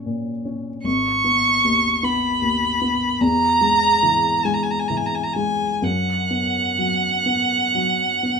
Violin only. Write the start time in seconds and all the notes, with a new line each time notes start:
0.84 C#6
2.04 B5
3.21 A#5
4.45 G#5
4.54 A#5
4.63 G#5
4.70 A#5
4.79 G#5
4.88 A#5
4.97 G#5
5.06 A#5
5.15 G#5
5.23 A#5
5.33 G#5
5.84 F#5